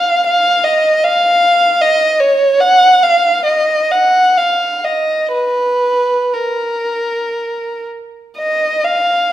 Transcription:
0.00 0.25 F5 medium
0.26 0.64 F5 medium
0.64 1.04 D#5 medium
1.04 1.82 F5 medium
1.81 2.20 D#5 medium
2.20 2.60 C#5 medium
2.60 3.02 F#5 medium
3.03 3.46 F5 medium
3.45 3.90 D#5 medium
3.91 4.38 F#5 medium
4.37 4.85 F5 medium
4.84 5.33 D#5 soft
5.32 6.31 B4 medium
6.33 7.86 A#4 soft
8.37 8.81 D#5 medium
8.84 9.31 F5 medium

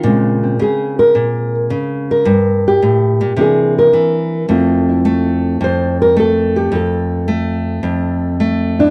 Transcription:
0.00 0.59 A#2 medium
0.00 0.61 F4 medium
0.04 0.58 C#3 medium
0.04 2.27 G#3 medium
0.04 0.43 C4 medium
0.43 3.38 C4 soft
0.59 1.15 C#3 medium
0.59 0.99 G#4 medium
0.99 1.54 A#4 medium
1.15 1.71 A#2 medium
1.70 2.24 C#3 medium
2.11 2.66 A#4 medium
2.25 2.82 G2 medium
2.68 3.39 G4 medium
2.82 3.21 A2 medium
3.21 3.36 A#2 medium
3.36 3.93 C3 medium
3.36 3.93 E3 soft
3.36 4.48 A#3 soft
3.36 4.48 D4 soft
3.41 3.78 G#4 medium
3.79 4.33 A#4 medium
3.93 4.49 E3 medium
4.49 5.60 F2 medium
4.49 5.05 A3 medium
4.49 8.00 C4 medium
4.49 4.89 E4 medium
4.49 5.64 F4 medium
4.89 6.56 E4 soft
5.05 6.16 A3 medium
5.61 6.71 F2 medium
5.61 6.01 C5 medium
6.02 6.18 A#4 medium
6.16 7.27 A3 medium
6.16 6.57 A4 medium
6.56 6.73 G4 medium
6.72 7.82 F2 medium
6.72 7.30 A4 medium
7.28 8.39 A3 medium
7.83 8.90 F2 medium
8.40 8.90 A3 medium
8.79 8.90 D4 medium
8.79 8.90 E4 medium

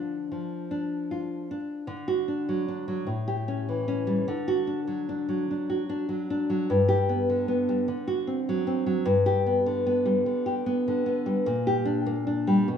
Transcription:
0.00 0.27 D3 medium
0.00 0.31 F3 soft
0.00 0.70 D4 medium
0.00 0.14 F4 medium
0.32 1.51 F3 soft
0.71 1.50 D4 medium
1.11 1.87 F4 soft
1.51 1.87 D4 medium
1.87 3.05 D3 medium
2.08 2.41 F#4 medium
2.28 2.67 D4 medium
2.49 2.87 F#3 medium
2.68 3.08 D4 medium
2.88 3.08 F#3 medium
3.07 4.22 A2 medium
3.28 3.59 G4 medium
3.48 3.87 C#4 medium
3.69 4.27 E3 medium
3.88 4.27 C#4 medium
4.07 4.26 G3 medium
4.28 5.45 D3 medium
4.48 4.79 F#4 medium
4.67 5.08 D4 medium
4.87 5.27 F#3 medium
5.09 5.49 D4 medium
5.29 6.08 F#3 medium
5.51 5.88 D4 soft
5.70 6.59 F#4 medium
5.89 6.29 D4 medium
6.09 6.48 F#3 medium
6.30 6.70 D4 medium
6.50 6.69 F#3 medium
6.70 7.85 G2 medium
6.88 7.21 G4 medium
7.09 7.47 B3 medium
7.30 7.87 D3 medium
7.48 7.88 B3 medium
7.69 7.88 G3 medium
7.88 9.02 D3 medium
8.07 8.39 F#4 medium
8.27 8.66 C4 medium
8.49 8.85 F#3 medium
8.67 9.06 C4 medium
8.86 9.06 F#3 medium
9.05 10.22 G2 medium
9.26 9.58 G4 medium
9.46 9.85 B3 medium
9.66 10.25 D3 medium
9.86 10.65 B3 medium
10.06 10.96 G3 medium
10.26 10.86 D3 medium
10.46 11.35 G4 medium
10.66 11.05 B3 medium
10.88 11.46 D3 medium
11.06 11.46 B3 medium
11.26 11.46 G3 medium
11.46 12.64 A#2 medium
11.67 11.99 G4 medium
11.85 12.26 D4 medium
12.06 12.68 A#3 medium
12.27 12.68 D4 medium
12.47 12.68 G3 medium
12.68 12.78 B2 medium

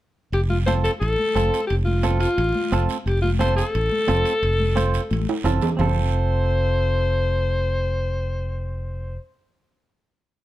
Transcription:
0.32 0.87 F1 medium
0.32 0.41 G4 medium
0.32 high conga soft
0.32 high timbale medium
0.32 long guiro medium
0.50 0.57 F4 medium
0.50 high conga medium
0.66 0.91 C4 medium
0.66 0.91 F4 medium
0.66 0.91 A4 medium
0.66 0.74 C5 medium
0.66 high conga medium
0.66 high timbale medium
0.66 short guiro medium
0.84 0.91 A4 medium
0.84 high timbale medium
0.84 short guiro medium
1.00 1.15 A1 medium
1.00 1.65 A4 loud
1.00 high conga soft
1.00 high timbale medium
1.00 long guiro medium
1.19 high conga medium
1.35 1.49 F1 medium
1.35 1.60 C4 medium
1.35 1.60 F4 medium
1.35 1.60 A4 medium
1.35 high conga medium
1.35 high timbale medium
1.35 short guiro medium
1.54 high timbale medium
1.54 short guiro medium
1.67 2.25 F1 medium
1.67 1.75 G4 medium
1.67 high conga soft
1.67 high timbale medium
1.67 long guiro medium
1.85 2.17 F4 medium
1.85 high conga medium
2.03 2.28 C4 medium
2.03 2.28 F4 medium
2.03 2.28 A4 medium
2.03 high conga medium
2.03 high timbale medium
2.03 short guiro medium
2.19 2.85 F4 loud
2.19 high timbale medium
2.19 short guiro medium
2.38 2.51 A1 medium
2.38 high conga soft
2.38 high timbale medium
2.38 long guiro medium
2.55 high conga medium
2.72 2.86 F1 loud
2.72 2.96 C4 medium
2.72 2.96 F4 medium
2.72 2.97 A4 medium
2.72 high conga medium
2.72 high timbale medium
2.72 short guiro medium
2.89 high timbale medium
2.89 short guiro medium
3.06 3.61 F1 medium
3.06 3.21 G4 medium
3.06 high conga soft
3.06 high timbale medium
3.06 long guiro medium
3.22 3.30 F4 medium
3.22 high conga medium
3.39 3.64 C4 medium
3.39 3.64 F4 medium
3.39 3.65 A4 medium
3.39 3.56 C5 medium
3.39 high conga medium
3.39 high timbale medium
3.39 short guiro medium
3.56 5.41 A4 loud
3.56 high timbale medium
3.56 short guiro medium
3.75 3.88 A1 medium
3.75 high conga soft
3.75 high timbale medium
3.75 long guiro medium
3.92 high conga medium
4.08 4.22 F1 loud
4.08 4.32 C4 medium
4.08 4.33 F4 medium
4.08 4.33 A4 medium
4.08 high conga medium
4.08 high timbale medium
4.08 short guiro medium
4.25 high timbale medium
4.25 short guiro medium
4.42 4.97 F1 medium
4.42 high conga soft
4.42 high timbale medium
4.42 long guiro medium
4.60 high conga medium
4.76 5.00 C4 medium
4.76 5.01 F4 medium
4.76 5.01 C5 medium
4.76 high conga medium
4.76 high timbale medium
4.76 short guiro medium
4.94 high timbale medium
4.94 short guiro medium
5.11 5.25 A1 medium
5.11 high conga medium
5.11 high timbale medium
5.11 long guiro medium
5.29 high timbale loud
5.44 5.58 F1 medium
5.44 5.69 C4 medium
5.44 5.69 F4 medium
5.44 5.69 A4 medium
5.44 low conga medium
5.44 high timbale medium
5.44 short guiro medium
5.61 low conga medium
5.61 low timbale medium
5.61 short guiro medium
5.77 9.17 F1 medium
5.77 9.15 C4 medium
5.77 9.17 F4 medium
5.77 9.18 C5 medium
5.77 low conga loud
5.77 low timbale loud
5.77 long guiro medium
5.81 9.19 A4 medium

